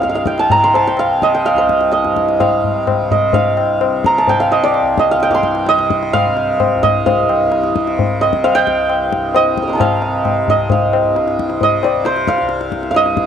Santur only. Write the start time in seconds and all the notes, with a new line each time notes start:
Already playing: D#5 G5
0.03 F5
0.09 F5
0.15 F5
0.27 G5
0.39 A5
0.51 A#5
0.64 C6
0.75 A5
0.87 G5
0.99 F5
1.23 D#5
1.34 G5
1.46 F5
1.58 C5
1.92 D#5
2.40 F5
3.12 D#5
3.34 F5
4.06 A#5
4.18 A5
4.29 G5
4.40 F5
4.52 D#5
4.63 D5
4.99 D#5
5.11 F5
5.23 G5
5.31 C6 D6
5.69 D#5
6.13 F5
6.83 D#5
7.06 F5
8.21 D#5
8.44 F5
8.55 G5
9.36 D#5
9.62 D#6 F6
9.68 C6 D6
9.73 A5 A#5
9.78 F5 G5
10.50 D#5
10.72 F5
11.63 D#5
11.84 D5
12.06 C5
12.28 F5
12.91 F5
12.96 D#5